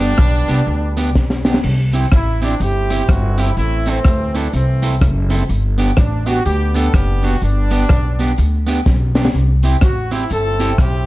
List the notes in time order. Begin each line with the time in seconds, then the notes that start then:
Already playing: G1 G3 B3 D4
0.00 B3 D4 G4
0.18 B1, kick, cross-stick
0.48 C2 B3 D4 G4, closed hi-hat
0.67 D2, muted clean electric guitar stroke
0.97 B3 D4 G4, closed hi-hat
1.15 B1, kick, snare
1.30 snare
1.45 B3 D4 G4, snare
1.54 snare
1.63 C2, crash
1.92 C4 E4 G4, closed hi-hat
2.12 A1 E4, kick, cross-stick, closed hi-hat
2.42 C4 D4 E4 G4, closed hi-hat
2.60 G1 C4 E4 G4, muted clean electric guitar stroke, closed hi-hat
2.90 C4 E4 G4, closed hi-hat
3.09 G1 F#4, kick, cross-stick, closed hi-hat
3.38 C4 E4 G4, closed hi-hat
3.57 A1 A3 C4 E4, closed hi-hat
3.86 E3 A3 C4 E4 A4, closed hi-hat
4.05 D2, kick, cross-stick, closed hi-hat
4.35 C4 D4 E4 A4, closed hi-hat
4.53 C2 E3 A3 C4, muted clean electric guitar stroke, closed hi-hat
4.82 C4 E4 A4, closed hi-hat
5.01 F#1, kick, cross-stick, closed hi-hat
5.30 C4 E4 A4, closed hi-hat
5.49 G1, closed hi-hat
5.78 B3 D4 G4, closed hi-hat
5.97 A1 D4, kick, cross-stick, closed hi-hat
6.26 B3 D4 F#4 G4, closed hi-hat
6.45 D2 B3 D4 G4, muted clean electric guitar stroke, closed hi-hat
6.74 B3 D4 G4 A4, closed hi-hat
6.94 F#1 G4, muted clean electric guitar stroke, kick, cross-stick, closed hi-hat
7.22 B3 D4 F#4 G4, open hi-hat
7.42 G1 G3 B3 D4, closed hi-hat
7.71 B3 D4 G4, closed hi-hat
7.89 B1, kick, cross-stick, closed hi-hat
8.19 B3 D4 G4, closed hi-hat
8.38 D2, muted clean electric guitar stroke, closed hi-hat
8.67 B3 D4 G4, closed hi-hat
8.86 B1, kick, snare
9.15 B3 D4 G4, snare
9.25 snare
9.35 C2, closed hi-hat
9.63 C4 E4 G4, closed hi-hat
9.81 A1 F#4, kick, cross-stick, closed hi-hat
10.11 C4 E4 G4, closed hi-hat
10.30 G1 C4 E4 A4, muted clean electric guitar stroke, closed hi-hat
10.59 C4 E4 G4, closed hi-hat
10.78 B1 G4, kick, cross-stick, closed hi-hat